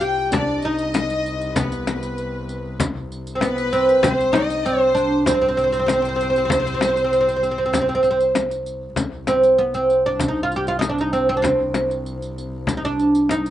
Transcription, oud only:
0.01 G4
0.33 D4
0.65 D#4
1.56 B3
3.35 C4
3.42 B3
3.73 C4
4.03 C4
4.33 D#4
4.66 C4
4.95 D4
5.27 C4
5.34 C4
5.42 C4
5.49 C4
5.57 C4
5.64 C4
5.72 C4
5.79 C4
5.86 C4
5.93 C4
6.02 C4
6.09 C4
6.16 C4
6.23 C4
6.30 C4
6.38 C4
6.45 C4
6.53 C4
6.60 C4
6.67 C4
6.74 C4
6.81 C4
6.89 C4
6.96 C4
7.04 C4
7.13 C4
7.21 C4
7.28 C4
7.36 C4
7.43 C4
7.51 C4
7.58 C4
7.66 C4
7.73 C4
7.81 C4
7.89 C4
7.95 C4
8.03 C4
8.11 C4
9.28 C4
9.58 B3
9.75 C4
10.06 D4
10.28 D#4
10.43 F4
10.56 G4
10.68 F4
10.79 D#4
10.89 D4
11.01 D#4
11.13 C4
11.29 C4
11.37 D4
11.42 C4
12.77 D#4
12.85 D4
13.31 D#4

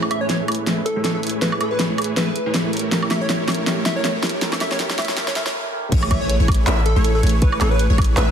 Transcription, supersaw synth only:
0.11 A3 E4 G#4 B4 C#5
0.40 A3 E4 G#4 B4 C#5
0.67 A3 E4 G#4 B4 E5
0.96 A3 E4 G#4 B4 C#5
1.23 A3 E4 G#4 B4 C#5
1.42 A3 E4 G#4 B4 C#5
1.61 A3 E4 G#4 B4 C#5
1.90 A3 E4 G#4 B4 C#5
2.17 A3 E4 G#4 B4 E5
2.46 A3 E4 G#4 B4 C#5
2.73 A3 E4 G4 A#4 C#5
2.92 A3 E4 G4 A#4 C#5
3.11 A3 E4 G4 A#4 C#5
3.40 A3 E4 G4 A#4 C#5
3.67 A3 E4 G4 A#4 C#5
3.86 A3 E4 G4 A#4 C#5
4.15 A3 E4 G4 A#4 C#5
4.42 A3 E4 G4 A#4 C#5
4.61 A3 E4 G4 A#4 C#5
4.80 A3 E4 G4 A#4 C#5
4.98 A3 E4 G4 A#4 C#5
5.17 A3 E4 G4 A#4 C#5
5.36 A3 E4 G4 A#4 C#5
5.92 A3 E4 G#4 B4 C#5
6.11 A3 E4 G#4 B4 C#5
6.40 A3 E4 G#4 B4 C#5
6.67 A3 E4 G#4 B4 E5
6.96 A3 E4 G#4 B4 C#5
7.23 A3 E4 G#4 B4 C#5
7.42 A3 E4 G#4 B4 C#5
7.61 A3 E4 G#4 B4 C#5
7.90 A3 E4 G#4 B4 C#5
8.17 A3 E4 G#4 B4 E5

